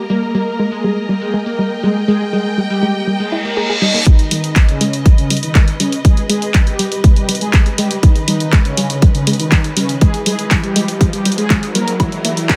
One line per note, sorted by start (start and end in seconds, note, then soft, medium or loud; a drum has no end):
0.00 4.06 A#3 medium
0.00 4.06 A#4 medium
0.00 12.56 D#5 medium
0.00 1.30 A#5 medium
0.10 0.13 G3 medium
0.10 0.28 A#3 medium
0.10 0.28 A#4 loud
0.34 0.38 G3 medium
0.34 0.61 A#3 medium
0.34 0.61 A#4 medium
0.59 0.63 G#3 medium
0.72 1.07 G#3 medium
0.72 1.07 G#4 medium
0.84 0.88 G3 medium
1.09 1.13 G3 medium
1.15 4.07 G5 medium
1.21 1.39 G#3 medium
1.21 1.39 G#4 medium
1.34 1.38 G#3 medium
1.46 1.73 A#3 medium
1.46 1.73 A#4 medium
1.59 1.62 G3 medium
1.83 1.87 G3 medium
1.83 2.01 G#3 medium
1.83 2.01 G#4 medium
2.08 2.12 G#3 medium
2.08 2.26 G#3 loud
2.08 2.26 G#4 loud
2.33 2.37 G3 medium
2.33 2.60 G#3 medium
2.33 2.60 G#4 medium
2.58 2.61 G3 medium
2.70 3.06 G3 medium
2.70 3.06 G4 loud
2.83 2.86 G#3 medium
3.07 3.11 G3 medium
3.07 reverse cymbal medium
3.20 3.38 G#3 medium
3.20 3.37 G#4 medium
3.32 3.38 E4 medium
3.45 3.71 A#3 medium
3.45 3.71 A#4 medium
3.57 3.63 G#4 medium
3.69 3.76 G#4 medium
3.82 3.88 G3 loud
3.82 4.00 D#4 medium
3.82 4.00 D#5 medium
3.94 3.98 A#3 medium
4.06 4.39 G#1 medium
4.06 4.24 D#3 medium
4.06 4.10 G#3 loud
4.06 4.24 D#4 medium
4.06 12.00 B4 medium
4.06 kick loud
4.06 closed hi-hat medium
4.06 riser medium
4.19 closed hi-hat soft
4.31 4.58 D#3 medium
4.31 4.35 G3 medium
4.31 4.58 D#4 medium
4.31 open hi-hat loud
4.44 4.76 G#1 medium
4.44 closed hi-hat soft
4.56 4.60 G3 medium
4.56 kick loud
4.56 clap loud
4.56 closed hi-hat medium
4.69 5.04 C#3 medium
4.69 5.04 C#4 medium
4.69 closed hi-hat soft
4.81 4.85 G#3 medium
4.81 open hi-hat medium
4.93 5.25 G#1 medium
4.93 closed hi-hat soft
5.06 5.09 G3 medium
5.06 kick loud
5.06 closed hi-hat medium
5.18 5.36 C#3 medium
5.18 5.36 C#4 medium
5.18 closed hi-hat soft
5.30 5.62 G#1 medium
5.30 5.34 G3 medium
5.30 open hi-hat loud
5.37 closed hi-hat medium
5.43 5.70 D#3 medium
5.43 5.70 D#4 medium
5.43 closed hi-hat soft
5.55 5.59 G#3 medium
5.55 kick loud
5.55 clap loud
5.55 closed hi-hat medium
5.68 5.77 G#1 loud
5.68 closed hi-hat soft
5.80 5.98 C#3 medium
5.80 5.84 G3 medium
5.80 5.98 C#4 medium
5.80 open hi-hat loud
5.92 closed hi-hat soft
6.05 6.37 G#1 medium
6.05 6.09 G3 medium
6.05 6.23 G#3 medium
6.05 6.23 G#4 medium
6.05 kick loud
6.05 closed hi-hat medium
6.17 closed hi-hat soft
6.29 6.33 G#3 loud
6.29 6.56 G#3 medium
6.29 6.56 G#4 medium
6.29 open hi-hat loud
6.42 6.74 G#1 medium
6.42 closed hi-hat soft
6.54 6.58 G3 medium
6.54 kick loud
6.54 clap medium
6.54 closed hi-hat medium
6.67 7.02 G3 medium
6.67 7.02 G4 medium
6.67 closed hi-hat soft
6.79 6.83 G3 medium
6.79 open hi-hat loud
6.92 7.24 G#1 medium
6.92 closed hi-hat soft
7.04 7.08 G#3 loud
7.04 kick loud
7.04 closed hi-hat medium
7.16 7.34 G3 medium
7.16 7.34 G4 medium
7.16 closed hi-hat soft
7.29 7.61 G#1 medium
7.29 7.33 G3 medium
7.29 open hi-hat loud
7.35 closed hi-hat medium
7.41 7.68 G#3 medium
7.41 7.68 G#4 medium
7.41 closed hi-hat soft
7.53 7.57 G3 medium
7.53 kick loud
7.53 clap loud
7.53 closed hi-hat medium
7.66 7.75 G#1 loud
7.66 closed hi-hat soft
7.78 7.96 G3 medium
7.78 7.82 G#3 loud
7.78 7.96 G4 medium
7.78 open hi-hat loud
7.91 closed hi-hat soft
8.03 8.35 G#1 medium
8.03 8.21 D#3 medium
8.03 8.07 G3 medium
8.03 8.21 D#4 loud
8.03 kick loud
8.03 closed hi-hat medium
8.16 closed hi-hat soft
8.28 8.55 D#3 medium
8.28 8.32 G3 medium
8.28 8.55 D#4 loud
8.28 open hi-hat loud
8.40 8.72 G#1 medium
8.40 closed hi-hat soft
8.53 8.56 G#3 loud
8.53 kick loud
8.53 clap loud
8.53 closed hi-hat medium
8.65 9.01 C#3 medium
8.65 9.01 C#4 medium
8.65 closed hi-hat soft
8.77 8.81 G3 medium
8.77 open hi-hat loud
8.90 9.22 G#1 medium
8.90 closed hi-hat soft
9.02 9.06 G3 medium
9.02 kick loud
9.02 closed hi-hat medium
9.15 9.33 C#3 medium
9.15 9.32 C#4 medium
9.15 closed hi-hat soft
9.27 9.59 G#1 medium
9.27 9.31 G#3 loud
9.27 open hi-hat loud
9.33 closed hi-hat medium
9.40 9.66 D#3 medium
9.40 9.66 D#4 medium
9.40 closed hi-hat soft
9.52 9.56 G3 medium
9.52 kick loud
9.52 clap loud
9.52 closed hi-hat medium
9.64 9.73 G#1 loud
9.64 closed hi-hat soft
9.77 9.95 C#3 medium
9.77 9.80 G3 medium
9.77 9.95 C#4 medium
9.77 open hi-hat loud
9.89 closed hi-hat soft
10.01 10.34 G#1 medium
10.01 10.19 G#3 medium
10.01 10.05 G#3 loud
10.01 10.19 G#4 loud
10.01 kick loud
10.01 closed hi-hat medium
10.14 closed hi-hat soft
10.26 10.30 G3 medium
10.26 10.53 G#3 medium
10.26 10.53 G#4 medium
10.26 open hi-hat loud
10.39 10.71 G#1 medium
10.39 closed hi-hat soft
10.51 10.55 G3 medium
10.51 kick loud
10.51 clap medium
10.51 closed hi-hat medium
10.63 10.99 G3 medium
10.63 10.99 G4 medium
10.63 closed hi-hat soft
10.76 10.80 G#3 loud
10.76 open hi-hat loud
10.88 11.20 G#1 medium
10.88 closed hi-hat soft
11.01 11.04 G3 medium
11.01 kick loud
11.01 closed hi-hat medium
11.13 11.31 G3 medium
11.13 11.31 G4 medium
11.13 closed hi-hat soft
11.25 11.64 D#1 loud
11.25 11.29 G3 medium
11.25 open hi-hat loud
11.32 closed hi-hat medium
11.38 11.65 G#3 medium
11.38 11.65 G#4 loud
11.38 closed hi-hat soft
11.50 11.54 G#3 loud
11.50 kick loud
11.50 clap loud
11.50 closed hi-hat medium
11.63 11.95 G#1 medium
11.63 closed hi-hat soft
11.75 11.79 G3 medium
11.75 11.93 A#3 medium
11.75 11.93 A#4 medium
11.75 open hi-hat loud
11.88 closed hi-hat soft
12.00 12.32 G#1 loud
12.00 12.18 E3 medium
12.00 12.04 G#3 medium
12.00 12.18 E4 medium
12.00 12.56 A#4 medium
12.00 kick loud
12.00 closed hi-hat medium
12.00 low woodblock medium
12.12 closed hi-hat soft
12.24 12.51 E3 medium
12.24 12.31 A#3 medium
12.24 12.51 E4 medium
12.24 open hi-hat loud
12.37 12.56 G#1 medium
12.37 closed hi-hat soft
12.49 12.53 G3 medium
12.49 kick loud
12.49 clap loud
12.49 closed hi-hat medium